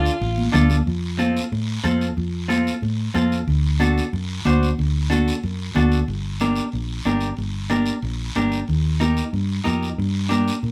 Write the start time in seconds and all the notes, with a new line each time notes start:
Already playing: D4 F4 A4
0.06 short guiro
0.21 A1, high conga, long guiro
0.38 high conga
0.52 D2 D4 F4 A4, high conga, low conga, short guiro
0.70 high conga, short guiro
0.87 F2, high conga, long guiro
1.19 C4 F4 A4, high conga, short guiro
1.37 short guiro
1.52 A2, high conga, long guiro
1.84 F2 C4 F4 A4, high conga, short guiro
2.01 short guiro
2.17 F2, high conga, long guiro
2.48 C4 F4 A4, high conga, short guiro
2.67 short guiro
2.82 A2, high conga, long guiro
3.14 F2 C4 F4 A4, high conga, short guiro
3.32 short guiro
3.47 D2, high conga, long guiro
3.80 D4 F#4 A4, high conga, short guiro
3.98 short guiro
4.13 F#2, high conga, long guiro
4.45 D2 D4 F#4 C5, high conga, short guiro
4.63 short guiro
4.78 D2, high conga, long guiro
5.10 D4 F#4 A4, high conga, short guiro
5.28 short guiro
5.43 F#2, high conga, long guiro
5.75 D2 D4 F#4 A4, high conga, short guiro
5.92 short guiro
6.08 G1, high conga, long guiro
6.40 D4 G4 A#4, high conga, short guiro
6.56 short guiro
6.72 A#1, high conga, long guiro
7.04 G1 D4 G4 A#4, high conga, short guiro
7.20 short guiro
7.37 G1, high conga, long guiro
7.70 D4 G4 A#4, high conga, short guiro
7.86 short guiro
8.02 A#1, high conga, long guiro
8.35 G1 D4 G4 A#4, high conga, short guiro
8.52 short guiro
8.68 D#2, high conga, long guiro
9.00 D#4 G4 A#4, high conga, short guiro
9.17 short guiro
9.33 G2, high conga, long guiro
9.64 F2 D#4 G4 A#4, high conga, short guiro
9.83 short guiro
9.98 G2, high conga, long guiro
10.29 D4 G4 A#4, high conga, short guiro
10.48 short guiro
10.63 A#2, high conga, long guiro